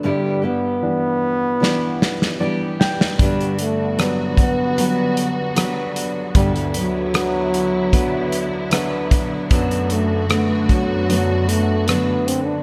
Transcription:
<<
  \new Staff \with { instrumentName = "Steel-string acoustic guitar" } { \time 4/4 \key g \major \tempo 4 = 76 <g, d g b e' g'>8 <g b e' g'>4. <g b e' g'>4 <g b e' g'>4 | <g, d b d' b'>2 <fis b d' b'>4 <fis b d' b'>4 | <g, d b d' b'>8 <fis b d' b'>4. <fis b d' b'>4 <fis b d' b'>4 | <fis b d' a'>2 <fis b d' a'>4 <fis b d' a'>4 | }
  \new Staff \with { instrumentName = "String section" } { \time 4/4 \key g \major << { r1 | fis'1 | e'1 | <fis, a fis'>1 | } \\ { r1 | <d b>1~ | <d b>1~ | <d b>1 | } >> }
  \new Staff \with { instrumentName = "Trombone" } { \time 4/4 \key g \major g8 b2. r8 | g8 a8 b8 b2 r8 | g8 fis2. r8 | b8 a8 a8 fis4 a8 b8 c'16 d'16 | }
  \new Staff \with { instrumentName = "Grand piano" } { \time 4/4 \key g \major r2. d''8 g''8 | r1 | r1 | r1 | }
  \new Staff \with { instrumentName = "Grand piano" } { \clef bass \time 4/4 \key g \major g,4 <e g d'>4 <e g d'>4 <e g d'>4 | g,4 <fis g b>4 <fis g b>4 <fis g b>4 | d,4 <d fis b>4 <d fis b>4 <d fis b>4 | fis,4 <d a b>4 <d a b>4 <d a b>4 | }
  \new DrumStaff \with { instrumentName = "Drums" } \drummode { \time 4/4 r4 r4 sn8 sn16 sn16 r8 sn16 sn16 | <hh bd>16 hh16 hh8 <hh ss>8 <hh bd>8 hh8 hh8 <hh ss>8 hh8 | <hh bd>16 hh16 hh8 <hh ss>8 hh8 <hh bd>8 hh8 <hh ss>8 <hh bd ss>8 | <hh bd>16 hh16 hh8 <hh ss>8 <hh bd>8 hh8 hh8 <hh ss>8 hh8 | }
>>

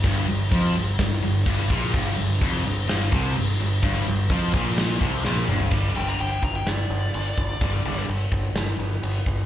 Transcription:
<<
  \new Staff \with { instrumentName = "Lead electric guitar" } { \time 4/4 \key g \minor \tempo 4 = 127 r1 | r1 | r1 | r8 g''16 bes''16 g''16 g''16 bes''16 g''16 d''2~ |
d''4 r2. | }
  \new Staff \with { instrumentName = "Distorted electric guitar" } { \clef bass \time 4/4 \key g \minor g,8 g,8 f8 g,8 g,8 g,8 g,8 bes,8 | g,8 g,8 f,8 g,8 g,8 c8 g,8 g,8 | g,8 g,8 f8 bes,4 c8 bes,8 g,8 | <g, d g>8 <g, d g>8 r2. |
<g, d g>8 <g, d g>8 r2. | }
  \new Staff \with { instrumentName = "Distorted electric guitar" } { \clef bass \time 4/4 \key g \minor g,8 g,8 f8 g,8 g,8 g,8 g,8 bes,8 | g,8 g,8 f,8 g,8 g,8 c8 g,8 g,8 | g,8 g,8 f8 bes,4 c8 bes,8 g,8 | r1 |
r1 | }
  \new Staff \with { instrumentName = "Overdriven electric guitar" } { \clef bass \time 4/4 \key g \minor g,8 g,8 f8 g,8 g,8 g,8 g,8 bes,8 | g,8 g,8 f,8 g,8 g,8 c8 g,8 g,8 | g,8 g,8 f8 bes,4 c8 bes,8 g,8 | <g, d g>8 <g, d g>8 r2. |
<g, d g>8 <g, d g>8 r2. | }
  \new Staff \with { instrumentName = "Picked electric bass" } { \clef bass \time 4/4 \key g \minor g,,8 g,,8 f,8 g,,8 g,,8 g,,8 g,,8 bes,,8 | g,,8 g,,8 f,,8 g,,8 g,,8 c,8 g,,8 g,,8 | g,,8 g,,8 f,8 bes,,4 c,8 bes,,8 g,,8 | g,,8 g,,8 g,,8 g,,8 g,,8 g,,8 g,,8 g,,8 |
g,,8 g,,8 g,,8 g,,8 g,,8 g,,8 g,,8 g,,8 | }
  \new DrumStaff \with { instrumentName = "Drums" } \drummode { \time 4/4 <cymc bd>8 cymc8 <cymc bd>8 cymc8 <cymc bd sn>8 cymc8 <cymc bd>8 <cymc bd>8 | <cymc bd>16 sn16 cymc8 <cymc bd>8 cymc8 <cymc sn>8 <cymc bd>8 cymc8 cymc8 | <cymc bd>16 sn16 cymc8 <cymc bd>8 <cymc bd>8 <cymc sn>8 <cymc bd>8 sn16 tommh16 toml16 tomfh16 | <cymc bd>8 cymr8 cymr8 <bd cymr>8 <cymr sn>8 cymr8 cymr8 <bd cymr>8 |
<bd cymr>8 cymr8 cymr8 <bd cymr>8 <cymr sn>8 cymr8 cymr8 <bd cymr>8 | }
>>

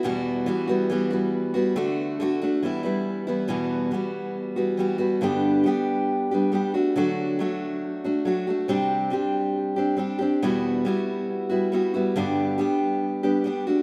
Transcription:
\new Staff \with { instrumentName = "Steel-string acoustic guitar" } { \time 4/4 \key e \minor \tempo 4 = 139 <e, b, e g b fis'>4 <e g b fis'>8 <e g b fis'>8 <e g b fis'>8 <e g b fis'>4 <e g b fis'>8 | <d a d' fis'>4 <d a d' fis'>8 <a d' fis'>8 <e g b e'>8 <e g b e'>4 <e g b e'>8 | <e, b, e g b fis'>4 <e g b fis'>4. <e g b fis'>8 <e g b fis'>8 <e g b fis'>8 | <g, d g b d' g'>4 <g b d' g'>4. <g b d' g'>8 <g b d' g'>8 <a d' fis'>8 |
<d fis a d' fis'>4 <fis a d' fis'>4. <a d' fis'>8 <fis a d' fis'>8 <a d' fis'>8 | <c g c' d' g'>4 <g c' d' g'>4. <c' d' g'>8 <g c' d' g'>8 <c' d' g'>8 | <e, b, g b e' fis'>4 <g b e' fis'>4. <g b e' fis'>8 <g b e' fis'>8 <g b e' fis'>8 | <g, d g b d' g'>4 <g b d' g'>4. <g b d' g'>8 <g b d' g'>8 <a d' fis'>8 | }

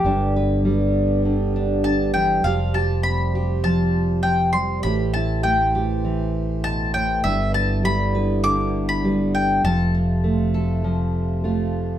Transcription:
<<
  \new Staff \with { instrumentName = "Mandolin" } { \time 4/4 \key f \lydian \tempo 4 = 100 g'8 r2 r8 a''8 g''8 | f''8 a''8 b''4 a''4 g''8 c'''8 | b''8 a''8 g''2 a''8 g''8 | e''8 a''8 b''4 d'''8. b''8. g''8 |
a''2. r4 | }
  \new Staff \with { instrumentName = "Nylon-string guitar" } { \time 4/4 \key f \lydian << { d'8 b'2 d'4. | <f' g'>8 g'4 g'2~ g'8 | <e' g'>8 e'4 g'2~ g'8 | <e' b'>8 b'4 b'4. b'4 |
<c' f' a'>8 f'4 a'4. f'4 | } \\ { g,4 g4 d4 d8 e8 | f4 c'4 f4 f8 g8 | a,4 a4 e4 b,8 a,8 | g,4 g4 d4 g4 |
f4 a4 f4 a4 | } >> }
  \new Staff \with { instrumentName = "Harmonium" } { \time 4/4 \key f \lydian <b g'>1 | <g' c''>1~ | <g' c''>1 | <b e'>1 |
<a f'>1 | }
  \new Staff \with { instrumentName = "Harmonium" } { \clef bass \time 4/4 \key f \lydian <d g>1 | <f g>1 | <e a>1 | <d g>1 |
<c f>1 | }
  \new Staff \with { instrumentName = "Fingered electric bass" } { \clef bass \time 4/4 \key f \lydian g,,1 | f,,1 | a,,1 | g,,1 |
f,,1 | }
>>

